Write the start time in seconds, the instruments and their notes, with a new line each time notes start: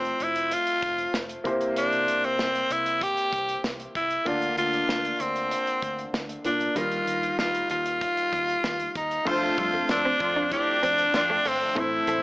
Already playing: fingered electric bass F1, grand piano F3 A3 C4 C5, tenor saxophone C4
0.05 closed hi-hat
0.20 fingered electric bass F1, tenor saxophone E4, closed hi-hat
0.36 closed hi-hat
0.51 tenor saxophone F4, closed hi-hat
0.67 closed hi-hat
0.83 fingered electric bass F1, kick, closed hi-hat
0.98 closed hi-hat
1.14 fingered electric bass F1, snare
1.29 closed hi-hat
1.44 fingered electric bass C2, grand piano C3 A#3 E4 G4 C5, kick, closed hi-hat
1.61 closed hi-hat
1.76 tenor saxophone D4, closed hi-hat
1.92 closed hi-hat
2.08 fingered electric bass C2, closed hi-hat
2.24 tenor saxophone C4, closed hi-hat
2.39 fingered electric bass C2, snare
2.55 closed hi-hat
2.70 fingered electric bass C2, tenor saxophone E4, closed hi-hat
2.86 closed hi-hat
3.01 tenor saxophone G4, kick, closed hi-hat
3.17 closed hi-hat
3.32 fingered electric bass C2, kick, closed hi-hat
3.49 closed hi-hat
3.64 fingered electric bass C2, snare
3.80 closed hi-hat
3.95 fingered electric bass C2, tenor saxophone E4, kick, closed hi-hat
4.10 closed hi-hat
4.25 fingered electric bass D2, grand piano D3 A#3 D4 F4 D5, tenor saxophone F4, kick, closed hi-hat
4.42 closed hi-hat
4.57 fingered electric bass D2, tenor saxophone F4, closed hi-hat
4.73 closed hi-hat
4.88 fingered electric bass D2, snare
5.05 closed hi-hat
5.20 fingered electric bass D2, tenor saxophone C4, closed hi-hat
5.36 closed hi-hat
5.51 closed hi-hat
5.67 closed hi-hat
5.82 fingered electric bass D2, kick, closed hi-hat
5.99 closed hi-hat
6.13 fingered electric bass D2, snare
6.29 closed hi-hat
6.45 fingered electric bass C2, grand piano A#3 D4 F4 D5, tenor saxophone D4, closed hi-hat
6.60 closed hi-hat
6.75 fingered electric bass D#2, grand piano D#3 G3 D#4 F4 A#4, tenor saxophone F4, closed hi-hat
6.92 closed hi-hat
7.07 fingered electric bass D#2, closed hi-hat
7.23 closed hi-hat
7.39 fingered electric bass D#2, tenor saxophone F4, snare
7.55 closed hi-hat
7.70 fingered electric bass D#2, tenor saxophone F4, closed hi-hat
7.86 closed hi-hat
8.01 kick, closed hi-hat
8.17 closed hi-hat
8.32 fingered electric bass D#2, kick, closed hi-hat
8.49 closed hi-hat
8.64 fingered electric bass D#2, snare
8.80 closed hi-hat
8.95 fingered electric bass D#2, tenor saxophone D#4, kick, closed hi-hat
9.11 closed hi-hat
9.25 fingered electric bass F2, analog synth pad D3 F3 A3 C4 D4, grand piano A3 D4 F4 C5, horn section F4 A4 C5, tenor saxophone F4, kick, crash
9.43 muted clean electric guitar stroke
9.58 fingered electric bass F2, clean electric guitar G3, horn section D4 F4 A4, kick, closed hi-hat
9.74 clean electric guitar A3
9.89 fingered electric bass F2, horn section D4 F4 A4, tenor saxophone D4, snare, closed hi-hat, tambourine
10.05 clean electric guitar C4
10.20 fingered electric bass F2, horn section C4 D4 F4, muted clean electric guitar stroke, kick, closed hi-hat
10.36 clean electric guitar D4
10.52 horn section C4 E4 G4, tenor saxophone D4, kick, closed hi-hat
10.83 fingered electric bass F2, clean electric guitar C4, closed hi-hat
10.98 closed hi-hat
11.14 fingered electric bass F2, horn section C4 D4 F4, muted clean electric guitar stroke, snare, closed hi-hat, tambourine
11.30 clean electric guitar A3
11.45 fingered electric bass G1, clean electric guitar A3, tenor saxophone C4, open hi-hat
11.75 fingered electric bass A1, grand piano A2 A3 C4 E4 C5, analog synth pad C3 E3 E4 A4, clean electric guitar C4, tenor saxophone E4, kick, closed hi-hat
12.07 fingered electric bass A1, clean electric guitar A3, closed hi-hat